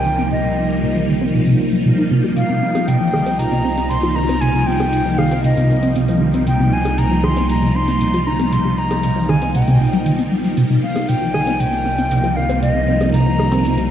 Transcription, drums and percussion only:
2.37 closed hi-hat medium
2.75 closed hi-hat soft
2.75 low bongo medium
2.88 closed hi-hat medium
3.14 low bongo medium
3.27 closed hi-hat medium
3.39 closed hi-hat medium
3.52 closed hi-hat soft
3.78 closed hi-hat medium
3.90 closed hi-hat medium
4.03 closed hi-hat soft
4.29 closed hi-hat medium
4.42 closed hi-hat medium
4.80 closed hi-hat medium
4.80 low bongo medium
4.93 closed hi-hat medium
5.19 low bongo medium
5.31 closed hi-hat medium
5.44 closed hi-hat medium
5.57 closed hi-hat soft
5.83 closed hi-hat medium
5.96 closed hi-hat medium
6.08 closed hi-hat soft
6.34 closed hi-hat medium
6.47 closed hi-hat medium
6.85 closed hi-hat medium
6.85 low bongo medium
6.98 closed hi-hat medium
7.24 low bongo medium
7.37 closed hi-hat medium
7.49 closed hi-hat medium
7.62 closed hi-hat soft
7.88 closed hi-hat medium
8.01 closed hi-hat medium
8.14 closed hi-hat soft
8.39 closed hi-hat medium
8.52 closed hi-hat medium
8.91 closed hi-hat medium
8.91 low bongo medium
9.03 closed hi-hat medium
9.29 low bongo medium
9.42 closed hi-hat medium
9.55 closed hi-hat medium
9.67 closed hi-hat soft
9.93 closed hi-hat medium
10.06 closed hi-hat medium
10.19 closed hi-hat soft
10.44 closed hi-hat medium
10.57 closed hi-hat medium
10.96 closed hi-hat medium
10.96 low bongo medium
11.09 closed hi-hat medium
11.34 low bongo medium
11.47 closed hi-hat medium
11.60 closed hi-hat medium
11.73 closed hi-hat soft
11.98 closed hi-hat medium
12.11 closed hi-hat medium
12.24 closed hi-hat soft
12.50 closed hi-hat soft
12.63 closed hi-hat medium
13.01 closed hi-hat medium
13.01 low bongo medium
13.14 closed hi-hat medium
13.39 low bongo medium
13.52 closed hi-hat medium
13.65 closed hi-hat medium
13.78 closed hi-hat soft

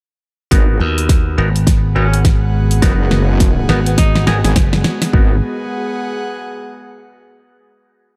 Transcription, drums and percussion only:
0.51 kick medium
0.51 snare soft
0.51 closed hi-hat medium
0.98 closed hi-hat medium
1.09 kick loud
1.09 snare medium
1.09 closed hi-hat medium
1.56 closed hi-hat medium
1.67 kick medium
1.67 snare medium
1.67 closed hi-hat medium
2.14 closed hi-hat medium
2.25 kick medium
2.25 snare medium
2.25 closed hi-hat medium
2.71 closed hi-hat medium
2.82 kick loud
2.82 snare medium
2.82 closed hi-hat medium
3.11 snare medium
3.40 kick loud
3.40 snare medium
3.40 closed hi-hat medium
3.69 snare medium
3.86 closed hi-hat medium
3.98 kick loud
3.98 snare loud
3.98 closed hi-hat medium
4.16 snare medium
4.27 snare loud
4.44 snare medium
4.44 closed hi-hat medium
4.56 kick loud
4.56 snare loud
4.56 closed hi-hat medium
4.73 snare medium
4.84 snare loud
5.02 snare loud
5.02 closed hi-hat medium
5.14 kick loud

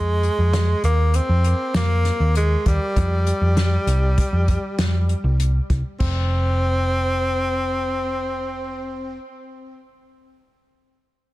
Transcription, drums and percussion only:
0.23 closed hi-hat medium
0.53 snare loud
0.53 closed hi-hat medium
0.84 closed hi-hat medium
1.14 closed hi-hat medium
1.44 closed hi-hat medium
1.74 snare loud
1.74 closed hi-hat medium
2.05 snare soft
2.05 closed hi-hat medium
2.35 closed hi-hat medium
2.66 kick medium
2.66 closed hi-hat medium
2.96 kick loud
2.96 closed hi-hat medium
3.27 closed hi-hat medium
3.57 snare medium
3.57 closed hi-hat medium
3.87 closed hi-hat medium
4.18 kick loud
4.18 closed hi-hat medium
4.48 kick medium
4.48 closed hi-hat medium
4.79 snare loud
4.79 closed hi-hat medium
5.09 closed hi-hat medium
5.40 closed hi-hat medium
5.70 kick medium
5.70 closed hi-hat medium
6.00 kick medium
6.00 crash medium

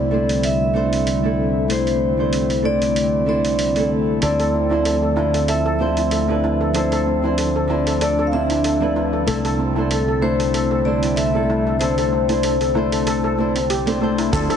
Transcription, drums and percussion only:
0.29 open hi-hat soft
0.43 open hi-hat medium
0.93 open hi-hat soft
1.07 open hi-hat medium
1.70 open hi-hat medium
1.87 open hi-hat soft
2.33 open hi-hat soft
2.50 open hi-hat soft
2.82 open hi-hat soft
2.96 open hi-hat medium
3.45 open hi-hat soft
3.59 open hi-hat medium
3.76 open hi-hat soft
4.22 open hi-hat medium
4.40 open hi-hat soft
4.85 open hi-hat medium
5.34 open hi-hat soft
5.48 open hi-hat medium
5.97 open hi-hat soft
6.11 open hi-hat medium
6.75 open hi-hat medium
6.92 open hi-hat soft
7.38 open hi-hat medium
7.87 open hi-hat soft
8.01 open hi-hat medium
8.50 open hi-hat soft
8.64 open hi-hat medium
9.28 open hi-hat medium
9.45 open hi-hat soft
9.91 open hi-hat medium
10.40 open hi-hat soft
10.54 open hi-hat medium
11.03 open hi-hat soft
11.17 open hi-hat medium
11.81 open hi-hat medium
11.98 open hi-hat soft
12.29 open hi-hat soft
12.43 open hi-hat medium
12.61 open hi-hat soft
12.92 open hi-hat soft
13.07 open hi-hat medium
13.56 open hi-hat soft
13.70 open hi-hat medium
13.87 open hi-hat soft
14.18 open hi-hat soft
14.33 kick loud
14.33 open hi-hat medium
14.33 shaker soft
14.50 open hi-hat soft

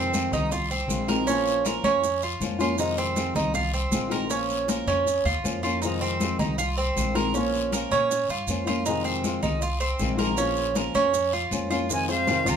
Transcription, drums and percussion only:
0.14 high conga medium
0.14 short guiro medium
0.14 maracas medium
0.33 high conga soft
0.33 low conga medium
0.33 short guiro medium
0.33 maracas soft
0.51 high conga soft
0.51 low conga medium
0.51 long guiro medium
0.51 maracas medium
0.71 high conga soft
0.71 maracas soft
0.89 high conga medium
0.89 short guiro medium
0.89 maracas medium
1.08 high conga medium
1.08 short guiro medium
1.08 maracas soft
1.27 high conga soft
1.27 long guiro medium
1.27 maracas medium
1.47 high conga soft
1.47 maracas soft
1.65 high conga medium
1.65 short guiro medium
1.65 maracas medium
1.84 short guiro medium
1.84 maracas soft
2.03 high conga soft
2.03 long guiro medium
2.03 maracas medium
2.22 high conga soft
2.22 maracas soft
2.41 high conga medium
2.41 short guiro medium
2.41 maracas medium
2.60 high conga medium
2.60 short guiro medium
2.60 maracas soft
2.78 high conga soft
2.78 long guiro medium
2.78 maracas medium
2.97 high conga soft
2.97 maracas soft
3.16 high conga loud
3.16 short guiro medium
3.16 maracas medium
3.36 high conga soft
3.36 low conga medium
3.36 short guiro medium
3.36 maracas soft
3.54 high conga soft
3.54 low conga medium
3.54 long guiro medium
3.54 maracas medium
3.73 high conga soft
3.73 maracas soft
3.91 high conga medium
3.91 short guiro medium
3.91 maracas medium
4.11 high conga medium
4.11 short guiro medium
4.11 maracas soft
4.30 high conga soft
4.30 long guiro medium
4.30 maracas medium
4.50 high conga soft
4.50 maracas soft
4.68 high conga medium
4.68 short guiro medium
4.68 maracas medium
4.88 high conga soft
4.88 short guiro medium
4.88 maracas soft
5.07 high conga soft
5.07 long guiro medium
5.07 maracas medium
5.25 high conga soft
5.25 maracas soft
5.45 high conga medium
5.45 short guiro medium
5.45 maracas medium
5.64 short guiro medium
5.64 maracas soft
5.82 long guiro medium
5.82 maracas medium
6.02 high conga soft
6.02 maracas soft
6.20 high conga medium
6.20 short guiro medium
6.20 maracas medium
6.39 high conga soft
6.39 low conga medium
6.39 short guiro medium
6.39 maracas soft
6.58 high conga soft
6.58 long guiro medium
6.58 maracas medium
6.77 high conga soft
6.77 maracas soft
6.96 high conga medium
6.96 short guiro medium
6.96 maracas medium
7.16 high conga medium
7.16 short guiro medium
7.16 maracas soft
7.35 long guiro medium
7.35 maracas medium
7.54 high conga soft
7.54 maracas soft
7.72 high conga medium
7.72 short guiro medium
7.72 maracas medium
7.91 high conga soft
7.91 short guiro medium
7.91 maracas soft
8.11 high conga soft
8.11 long guiro medium
8.11 maracas medium
8.29 high conga soft
8.29 maracas soft
8.48 high conga medium
8.48 short guiro medium
8.48 maracas medium
8.67 high conga medium
8.67 short guiro medium
8.67 maracas soft
8.86 long guiro medium
8.86 maracas medium
9.05 high conga soft
9.05 maracas soft
9.24 high conga loud
9.24 short guiro medium
9.24 maracas medium
9.43 high conga soft
9.43 low conga medium
9.43 short guiro medium
9.43 maracas soft
9.62 high conga soft
9.62 long guiro medium
9.62 maracas medium
9.80 high conga soft
9.80 maracas soft
9.99 high conga medium
9.99 short guiro medium
9.99 maracas medium
10.18 high conga medium
10.18 short guiro medium
10.18 maracas soft
10.37 long guiro medium
10.37 maracas medium
10.56 high conga soft
10.56 maracas soft
10.76 high conga loud
10.76 short guiro medium
10.76 maracas medium
10.94 short guiro medium
10.94 maracas soft
11.14 high conga soft
11.14 long guiro medium
11.14 maracas medium
11.33 high conga soft
11.33 maracas soft
11.51 high conga medium
11.51 short guiro medium
11.51 maracas medium
11.71 high conga medium
11.71 short guiro medium
11.71 maracas soft
11.89 long guiro medium
11.89 maracas medium
12.09 high conga soft
12.09 maracas soft
12.27 high conga loud
12.27 short guiro medium
12.27 maracas soft
12.46 high conga soft
12.46 low conga medium
12.46 short guiro medium
12.46 maracas medium

